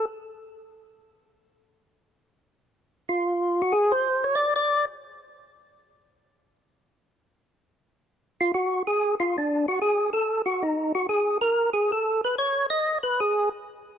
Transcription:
0, 0, Header, 1, 2, 480
1, 0, Start_track
1, 0, Tempo, 319659
1, 784, Time_signature, 4, 2, 24, 8
1, 20994, End_track
2, 0, Start_track
2, 0, Title_t, "Tonewheel organ"
2, 0, Program_c, 0, 16
2, 4639, Note_on_c, 0, 65, 68
2, 5431, Note_off_c, 0, 65, 0
2, 5436, Note_on_c, 0, 66, 70
2, 5591, Note_on_c, 0, 68, 90
2, 5608, Note_off_c, 0, 66, 0
2, 5881, Note_on_c, 0, 72, 93
2, 5892, Note_off_c, 0, 68, 0
2, 6365, Note_on_c, 0, 73, 93
2, 6375, Note_off_c, 0, 72, 0
2, 6534, Note_off_c, 0, 73, 0
2, 6537, Note_on_c, 0, 74, 104
2, 6815, Note_off_c, 0, 74, 0
2, 6844, Note_on_c, 0, 74, 92
2, 7288, Note_off_c, 0, 74, 0
2, 12623, Note_on_c, 0, 65, 78
2, 12790, Note_off_c, 0, 65, 0
2, 12829, Note_on_c, 0, 66, 73
2, 13253, Note_off_c, 0, 66, 0
2, 13322, Note_on_c, 0, 68, 85
2, 13740, Note_off_c, 0, 68, 0
2, 13813, Note_on_c, 0, 65, 67
2, 14065, Note_off_c, 0, 65, 0
2, 14082, Note_on_c, 0, 62, 58
2, 14508, Note_off_c, 0, 62, 0
2, 14538, Note_on_c, 0, 66, 84
2, 14707, Note_off_c, 0, 66, 0
2, 14738, Note_on_c, 0, 68, 82
2, 15168, Note_off_c, 0, 68, 0
2, 15212, Note_on_c, 0, 69, 76
2, 15645, Note_off_c, 0, 69, 0
2, 15702, Note_on_c, 0, 66, 76
2, 15955, Note_on_c, 0, 63, 60
2, 15969, Note_off_c, 0, 66, 0
2, 16403, Note_off_c, 0, 63, 0
2, 16441, Note_on_c, 0, 66, 81
2, 16618, Note_off_c, 0, 66, 0
2, 16653, Note_on_c, 0, 68, 76
2, 17085, Note_off_c, 0, 68, 0
2, 17139, Note_on_c, 0, 70, 84
2, 17568, Note_off_c, 0, 70, 0
2, 17620, Note_on_c, 0, 68, 72
2, 17889, Note_off_c, 0, 68, 0
2, 17902, Note_on_c, 0, 69, 76
2, 18337, Note_off_c, 0, 69, 0
2, 18386, Note_on_c, 0, 71, 82
2, 18552, Note_off_c, 0, 71, 0
2, 18595, Note_on_c, 0, 73, 84
2, 19017, Note_off_c, 0, 73, 0
2, 19072, Note_on_c, 0, 75, 91
2, 19496, Note_off_c, 0, 75, 0
2, 19568, Note_on_c, 0, 71, 79
2, 19824, Note_off_c, 0, 71, 0
2, 19826, Note_on_c, 0, 68, 80
2, 20260, Note_off_c, 0, 68, 0
2, 20994, End_track
0, 0, End_of_file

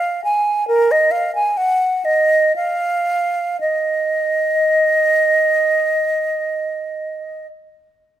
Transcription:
0, 0, Header, 1, 2, 480
1, 0, Start_track
1, 0, Key_signature, -6, "minor"
1, 0, Tempo, 864553
1, 386, Time_signature, 3, 2, 24, 8
1, 877, Tempo, 988468
1, 1357, Tempo, 1036269
1, 3966, End_track
2, 0, Start_track
2, 0, Title_t, "Flute"
2, 0, Program_c, 0, 73
2, 0, Note_on_c, 0, 77, 90
2, 132, Note_off_c, 0, 77, 0
2, 135, Note_on_c, 0, 80, 71
2, 373, Note_off_c, 0, 80, 0
2, 376, Note_on_c, 0, 70, 82
2, 507, Note_on_c, 0, 75, 76
2, 516, Note_off_c, 0, 70, 0
2, 618, Note_on_c, 0, 77, 79
2, 626, Note_off_c, 0, 75, 0
2, 746, Note_off_c, 0, 77, 0
2, 751, Note_on_c, 0, 80, 78
2, 873, Note_on_c, 0, 78, 78
2, 881, Note_off_c, 0, 80, 0
2, 1105, Note_on_c, 0, 75, 74
2, 1112, Note_off_c, 0, 78, 0
2, 1349, Note_off_c, 0, 75, 0
2, 1352, Note_on_c, 0, 77, 79
2, 1836, Note_off_c, 0, 77, 0
2, 1838, Note_on_c, 0, 75, 79
2, 3627, Note_off_c, 0, 75, 0
2, 3966, End_track
0, 0, End_of_file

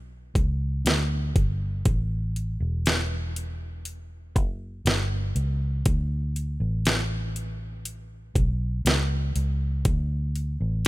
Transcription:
0, 0, Header, 1, 3, 480
1, 0, Start_track
1, 0, Key_signature, 2, "major"
1, 0, Tempo, 1000000
1, 890, Time_signature, 4, 2, 24, 8
1, 5222, End_track
2, 0, Start_track
2, 0, Title_t, "Fingered electric bass"
2, 0, Program_c, 0, 33
2, 0, Note_on_c, 0, 35, 82
2, 150, Note_off_c, 0, 35, 0
2, 168, Note_on_c, 0, 37, 80
2, 392, Note_off_c, 0, 37, 0
2, 408, Note_on_c, 0, 38, 83
2, 632, Note_off_c, 0, 38, 0
2, 651, Note_on_c, 0, 31, 76
2, 874, Note_off_c, 0, 31, 0
2, 890, Note_on_c, 0, 33, 96
2, 1231, Note_off_c, 0, 33, 0
2, 1250, Note_on_c, 0, 28, 80
2, 2090, Note_off_c, 0, 28, 0
2, 2090, Note_on_c, 0, 30, 88
2, 2313, Note_off_c, 0, 30, 0
2, 2329, Note_on_c, 0, 31, 79
2, 2553, Note_off_c, 0, 31, 0
2, 2570, Note_on_c, 0, 37, 82
2, 2793, Note_off_c, 0, 37, 0
2, 2812, Note_on_c, 0, 38, 97
2, 3152, Note_off_c, 0, 38, 0
2, 3168, Note_on_c, 0, 33, 79
2, 3990, Note_off_c, 0, 33, 0
2, 4009, Note_on_c, 0, 35, 87
2, 4233, Note_off_c, 0, 35, 0
2, 4248, Note_on_c, 0, 37, 91
2, 4472, Note_off_c, 0, 37, 0
2, 4491, Note_on_c, 0, 37, 87
2, 4714, Note_off_c, 0, 37, 0
2, 4729, Note_on_c, 0, 38, 105
2, 5070, Note_off_c, 0, 38, 0
2, 5090, Note_on_c, 0, 33, 83
2, 5222, Note_off_c, 0, 33, 0
2, 5222, End_track
3, 0, Start_track
3, 0, Title_t, "Drums"
3, 170, Note_on_c, 9, 36, 83
3, 172, Note_on_c, 9, 42, 64
3, 218, Note_off_c, 9, 36, 0
3, 220, Note_off_c, 9, 42, 0
3, 412, Note_on_c, 9, 42, 83
3, 418, Note_on_c, 9, 38, 94
3, 460, Note_off_c, 9, 42, 0
3, 466, Note_off_c, 9, 38, 0
3, 651, Note_on_c, 9, 36, 87
3, 652, Note_on_c, 9, 42, 75
3, 699, Note_off_c, 9, 36, 0
3, 700, Note_off_c, 9, 42, 0
3, 890, Note_on_c, 9, 42, 83
3, 891, Note_on_c, 9, 36, 99
3, 938, Note_off_c, 9, 42, 0
3, 939, Note_off_c, 9, 36, 0
3, 1134, Note_on_c, 9, 42, 65
3, 1182, Note_off_c, 9, 42, 0
3, 1372, Note_on_c, 9, 42, 80
3, 1378, Note_on_c, 9, 38, 102
3, 1420, Note_off_c, 9, 42, 0
3, 1426, Note_off_c, 9, 38, 0
3, 1615, Note_on_c, 9, 42, 68
3, 1663, Note_off_c, 9, 42, 0
3, 1850, Note_on_c, 9, 42, 87
3, 1898, Note_off_c, 9, 42, 0
3, 2092, Note_on_c, 9, 36, 88
3, 2094, Note_on_c, 9, 42, 66
3, 2140, Note_off_c, 9, 36, 0
3, 2142, Note_off_c, 9, 42, 0
3, 2332, Note_on_c, 9, 42, 82
3, 2338, Note_on_c, 9, 38, 97
3, 2380, Note_off_c, 9, 42, 0
3, 2386, Note_off_c, 9, 38, 0
3, 2572, Note_on_c, 9, 42, 65
3, 2620, Note_off_c, 9, 42, 0
3, 2811, Note_on_c, 9, 42, 83
3, 2812, Note_on_c, 9, 36, 95
3, 2859, Note_off_c, 9, 42, 0
3, 2860, Note_off_c, 9, 36, 0
3, 3053, Note_on_c, 9, 42, 64
3, 3101, Note_off_c, 9, 42, 0
3, 3290, Note_on_c, 9, 42, 90
3, 3296, Note_on_c, 9, 38, 103
3, 3338, Note_off_c, 9, 42, 0
3, 3344, Note_off_c, 9, 38, 0
3, 3533, Note_on_c, 9, 42, 68
3, 3581, Note_off_c, 9, 42, 0
3, 3770, Note_on_c, 9, 42, 82
3, 3818, Note_off_c, 9, 42, 0
3, 4010, Note_on_c, 9, 36, 89
3, 4013, Note_on_c, 9, 42, 65
3, 4058, Note_off_c, 9, 36, 0
3, 4061, Note_off_c, 9, 42, 0
3, 4252, Note_on_c, 9, 42, 93
3, 4258, Note_on_c, 9, 38, 95
3, 4300, Note_off_c, 9, 42, 0
3, 4306, Note_off_c, 9, 38, 0
3, 4491, Note_on_c, 9, 42, 78
3, 4539, Note_off_c, 9, 42, 0
3, 4728, Note_on_c, 9, 42, 82
3, 4729, Note_on_c, 9, 36, 102
3, 4776, Note_off_c, 9, 42, 0
3, 4777, Note_off_c, 9, 36, 0
3, 4971, Note_on_c, 9, 42, 60
3, 5019, Note_off_c, 9, 42, 0
3, 5207, Note_on_c, 9, 42, 81
3, 5222, Note_off_c, 9, 42, 0
3, 5222, End_track
0, 0, End_of_file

